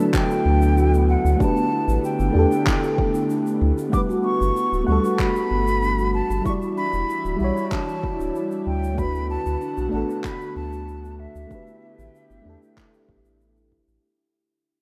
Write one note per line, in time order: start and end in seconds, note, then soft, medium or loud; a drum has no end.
0.00 3.89 D3 medium
0.00 1.37 F#3 medium
0.00 1.37 A3 medium
0.00 1.38 A3 medium
0.00 3.89 B3 medium
0.00 1.39 D4 medium
0.00 1.36 E4 medium
0.00 1.43 F#4 medium
0.00 0.13 A4 medium
0.00 1.39 A4 loud
0.00 1.43 B4 medium
0.14 1.05 G5 loud
0.14 kick loud
0.14 clap medium
0.14 shaker medium
0.30 0.39 F#4 medium
0.30 shaker medium
0.45 1.16 D2 loud
0.45 0.60 D4 medium
0.62 shaker medium
0.77 0.92 F#4 medium
0.77 shaker medium
0.94 1.08 A4 medium
0.94 shaker medium
1.09 1.38 F#5 medium
1.25 1.35 D2 loud
1.25 1.33 F#4 medium
1.25 shaker medium
1.37 2.29 A3 medium
1.37 3.90 A3 medium
1.37 2.31 D4 medium
1.37 kick loud
1.41 1.55 D4 medium
1.41 2.32 G4 medium
1.41 2.33 B4 medium
1.41 2.00 A5 loud
1.41 shaker medium
1.57 shaker soft
1.72 1.87 E4 loud
1.88 1.98 A1 medium
1.88 2.03 G4 medium
1.88 shaker medium
2.04 3.26 G5 medium
2.04 shaker medium
2.20 2.30 G1 medium
2.20 2.28 E4 medium
2.20 shaker medium
2.31 2.46 E2 medium
2.31 3.87 A3 medium
2.31 3.89 D4 medium
2.36 2.50 D4 medium
2.36 3.90 G4 medium
2.36 3.91 A4 loud
2.52 shaker medium
2.66 2.81 E4 loud
2.66 kick loud
2.66 clap medium
2.66 shaker medium
2.83 2.98 G4 medium
2.83 shaker soft
2.98 kick loud
3.15 3.23 E4 medium
3.15 shaker medium
3.30 3.44 D4 medium
3.30 shaker medium
3.47 shaker medium
3.62 3.72 D2 medium
3.62 3.76 E4 medium
3.77 3.92 G4 medium
3.77 shaker medium
3.89 4.82 A3 medium
3.89 6.43 B3 medium
3.89 4.08 D4 medium
3.89 4.84 F#5 medium
3.89 kick loud
3.89 shaker medium
3.93 4.85 G3 medium
3.93 6.43 A3 medium
3.93 4.86 B4 medium
3.93 4.00 D6 loud
4.09 4.23 F#4 loud
4.09 shaker soft
4.24 4.39 F#4 medium
4.24 4.84 C#6 loud
4.41 4.51 G1 loud
4.41 4.55 G4 medium
4.41 shaker medium
4.57 shaker medium
4.72 4.83 D1 medium
4.72 4.81 F#4 medium
4.72 shaker medium
4.84 4.99 D2 medium
4.84 6.40 A3 medium
4.84 5.02 D4 medium
4.84 6.41 F#5 medium
4.88 6.41 G3 medium
4.88 6.44 A4 loud
4.88 5.22 C#6 loud
5.04 5.18 F#4 loud
5.04 shaker medium
5.19 5.34 F#4 loud
5.19 6.14 B5 loud
5.19 kick loud
5.19 clap medium
5.19 shaker medium
5.35 5.50 G4 medium
5.35 shaker medium
5.51 6.22 G1 loud
5.67 5.75 F#4 medium
5.67 shaker medium
5.83 5.97 D4 medium
5.83 shaker medium
5.99 6.13 F#4 loud
5.99 shaker medium
6.14 6.29 F#4 medium
6.14 6.44 A5 loud
6.30 6.41 G1 medium
6.30 6.45 G4 medium
6.30 shaker medium
6.42 8.96 E3 medium
6.42 7.35 G3 medium
6.42 8.96 G3 medium
6.42 8.96 D4 medium
6.42 7.36 E4 medium
6.42 8.96 E4 medium
6.42 6.53 C#6 loud
6.42 kick loud
6.42 shaker medium
6.47 7.37 F#4 medium
6.47 7.39 D5 medium
6.62 6.70 E4 medium
6.62 shaker soft
6.77 6.92 D4 medium
6.77 7.36 B5 loud
6.93 7.04 E1 loud
6.93 7.07 E4 loud
6.93 shaker medium
7.09 7.23 E4 loud
7.09 shaker medium
7.25 7.35 D1 loud
7.25 7.40 F#4 medium
7.25 shaker medium
7.36 8.93 G3 loud
7.36 8.94 E4 medium
7.40 7.51 B1 medium
7.40 8.95 F#4 medium
7.40 8.96 C#5 loud
7.40 7.70 B5 loud
7.57 7.65 E4 medium
7.57 shaker medium
7.71 7.87 D4 medium
7.71 8.36 A5 loud
7.71 kick loud
7.71 clap medium
7.71 shaker medium
7.88 8.02 E4 loud
7.88 shaker soft
8.03 8.18 E4 loud
8.03 kick loud
8.20 8.30 D1 loud
8.20 8.35 F#4 medium
8.20 shaker medium
8.35 shaker medium
8.51 8.60 E4 medium
8.51 shaker soft
8.66 9.38 D2 medium
8.66 8.81 D4 medium
8.66 9.00 G5 loud
8.83 8.97 E4 loud
8.83 shaker medium
8.94 9.87 A3 medium
8.94 9.89 D4 medium
8.94 9.13 F#4 loud
8.94 kick loud
8.94 shaker medium
8.98 14.00 D3 medium
8.98 14.00 A3 medium
8.98 11.49 B3 medium
8.98 11.49 F#4 loud
8.98 9.90 F#4 medium
8.98 9.91 B4 medium
8.98 9.30 B5 loud
9.14 9.29 A4 medium
9.14 shaker soft
9.30 9.89 A5 loud
9.46 9.56 D2 loud
9.46 9.54 F#4 medium
9.46 shaker medium
9.61 9.76 D4 medium
9.61 shaker medium
9.77 9.88 B1 medium
9.77 9.91 F#4 loud
9.77 shaker medium
9.89 11.45 A3 medium
9.89 11.46 D4 medium
9.93 10.04 A1 medium
9.93 10.07 F#4 loud
9.93 11.48 F#4 medium
9.93 11.49 A4 loud
9.93 10.27 A5 medium
10.09 10.24 A4 medium
10.09 shaker medium
10.24 10.56 B5 loud
10.24 kick loud
10.24 clap medium
10.24 shaker medium
10.41 10.49 F#4 medium
10.41 shaker soft
10.56 11.27 D2 loud
10.56 10.71 D4 medium
10.56 11.21 A5 loud
10.72 10.86 F#4 loud
10.72 shaker medium
10.88 11.02 F#4 loud
10.88 shaker medium
11.04 11.19 A4 medium
11.04 shaker medium
11.20 13.40 E5 medium
11.35 11.46 D2 loud
11.35 11.44 F#4 medium
11.35 shaker medium
11.47 12.40 A3 medium
11.47 12.41 D4 medium
11.47 14.01 G4 medium
11.47 kick loud
11.47 shaker medium
11.51 14.01 B3 medium
11.51 11.66 D4 medium
11.51 12.43 G4 medium
11.51 12.44 B4 medium
11.67 11.81 E4 loud
11.67 shaker soft
11.82 11.97 E4 medium
11.99 12.09 A1 loud
11.99 12.13 G4 medium
11.99 shaker medium
12.15 shaker medium
12.30 12.41 G1 medium
12.30 12.38 E4 medium
12.30 shaker soft
12.42 12.56 E2 loud
12.42 13.98 A3 medium
12.42 13.99 D4 medium
12.42 12.60 D4 medium
12.47 14.00 G4 medium
12.47 14.02 A4 loud
12.62 12.76 E4 loud
12.62 shaker medium
12.77 12.92 E4 loud
12.77 kick loud
12.77 clap medium
12.77 shaker medium
12.94 13.08 G4 medium
12.94 shaker soft
13.09 13.80 A1 medium
13.09 kick loud
13.25 13.33 E4 medium
13.25 shaker medium
13.41 13.55 D4 medium
13.41 shaker medium
13.56 13.70 E4 loud
13.72 13.86 E4 loud
13.72 kick medium
13.88 13.98 A1 loud
13.88 14.03 G4 medium